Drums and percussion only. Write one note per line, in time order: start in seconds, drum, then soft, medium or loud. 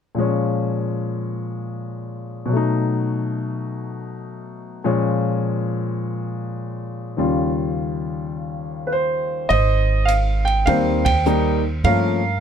9.50 kick soft
9.50 ride soft
10.08 hi-hat pedal soft
10.08 ride medium
10.47 ride soft
10.67 kick soft
10.67 ride medium
11.06 kick medium
11.06 ride medium
11.25 hi-hat pedal soft
11.84 kick soft
11.84 ride soft